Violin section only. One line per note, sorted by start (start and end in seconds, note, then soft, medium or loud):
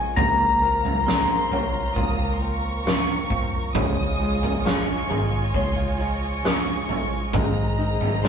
0.00 0.17 G#5 loud
0.17 1.02 A#5 medium
1.05 1.95 C6 loud
1.95 2.33 D#6 loud
2.33 2.40 C6 medium
2.41 3.75 C#6 loud
3.75 4.65 D#6 loud
4.65 5.54 C#6 loud
5.55 5.75 C6 medium
6.01 7.30 C#6 loud
7.34 8.23 A#5 medium
8.23 8.28 C6 medium